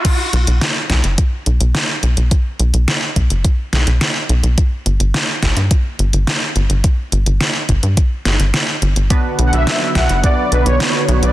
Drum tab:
CC |x---------------|----------------|----------------|----------------|
HH |x-xxx-xxx-xxx-xx|x-xxx-xxx-xxx-xx|x-xxx-xxx-xxx-xx|x-xxx-xxx-xxx-xx|
SD |----o-o-----o---|----o-----o-o---|----o-o-----o---|----o-----o-o---|
BD |o-----o-o-------|o-----o-o-------|o-----o-o-------|o-----o-o-------|

CC |----------------|
HH |x-xxx-xxx-xxx-xx|
SD |----o-o-----o---|
BD |o-----o-o-------|